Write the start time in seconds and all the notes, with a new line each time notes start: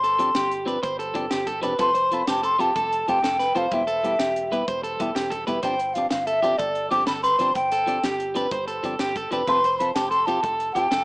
Already playing: G1 C6
0.04 A4, closed hi-hat
0.19 F3 C4 D4 G4, closed hi-hat
0.35 G1 G4, snare, closed hi-hat
0.51 closed hi-hat
0.66 F3 C4 D4 G4 B4, closed hi-hat
0.83 G1 C5, kick, closed hi-hat
0.99 A4, closed hi-hat
1.14 G1 F3 C4 D4 G4, kick, closed hi-hat
1.31 G1 G4, snare, closed hi-hat
1.47 A4, kick, closed hi-hat
1.62 E1 F3 C4 D4 G4 B4, closed hi-hat
1.79 F1 F3 C4 F4 A4 B4 C6, kick, closed hi-hat
1.94 C5, closed hi-hat
2.11 F3 C4 F4 A4 B5, closed hi-hat
2.27 F1 G4 A5, snare, closed hi-hat
2.43 A4 C6, closed hi-hat
2.59 F3 C4 F4 G4 A4 A5, closed hi-hat
2.76 F1 A4, kick, closed hi-hat
2.92 closed hi-hat
3.08 F1 F3 C4 F4 G4 A4 G5, closed hi-hat
3.24 F1 A4, snare, closed hi-hat
3.39 B4, snare, closed hi-hat
3.55 F1 F3 C4 F4 A4 C5 F5, closed hi-hat
3.71 E1 G3 B3 E4 G4 E5, kick, closed hi-hat
3.87 A4, closed hi-hat
4.03 G3 B3 E4 G4, closed hi-hat
4.19 E1 G4, snare, closed hi-hat
4.36 closed hi-hat
4.52 G3 B3 E4 G4 B4, closed hi-hat
4.68 E1 C5, kick, closed hi-hat
4.83 A4, closed hi-hat
5.00 E1 G3 B3 E4 G4, kick, closed hi-hat
5.15 E1 G4, snare, closed hi-hat
5.30 A4, kick, closed hi-hat
5.47 E1 G3 B3 E4 G4 B4, closed hi-hat
5.62 G1 F3 C4 D4 G4 C5 G5, kick, closed hi-hat
5.79 closed hi-hat
5.94 F3 C4 D4 G4 F5, closed hi-hat
6.10 G1 F5, muted clean electric guitar stroke, snare, closed hi-hat
6.26 A4 E5, closed hi-hat
6.42 F3 C4 D4 G4, closed hi-hat
6.58 G1 A4 D5, kick, closed hi-hat
6.75 closed hi-hat
6.90 G1 F3 C4 D4 G4 D6, closed hi-hat
7.07 G1 A4 B5, snare, closed hi-hat
7.23 B4 C6, snare, closed hi-hat
7.39 G1 F3 C4 D4 G4 C5, closed hi-hat
7.55 G1 G5, kick, closed hi-hat
7.71 A4, closed hi-hat
7.86 F3 C4 D4 G4, closed hi-hat
8.04 G1 G4, snare, closed hi-hat
8.20 closed hi-hat
8.35 F3 C4 D4 G4 B4, closed hi-hat
8.51 G1 C5, kick, closed hi-hat
8.68 A4, closed hi-hat
8.83 G1 F3 C4 D4 G4, kick, closed hi-hat
8.99 G1 G4, snare, closed hi-hat
9.16 A4, kick, closed hi-hat
9.31 E1 F3 C4 D4 G4 B4, closed hi-hat
9.47 F1 F3 C4 F4 A4 B4 C6, kick, closed hi-hat
9.64 C5, closed hi-hat
9.79 F3 C4 F4 A4 B5, closed hi-hat
9.94 F1 G4 A5, snare, closed hi-hat
10.09 A4 C6, closed hi-hat
10.26 F3 C4 F4 G4 A4 A5, closed hi-hat
10.43 F1 A4, kick, closed hi-hat
10.60 closed hi-hat
10.73 F1 F3 C4 G4 G5, closed hi-hat
10.77 F4 A4
10.91 F1 A4, snare, closed hi-hat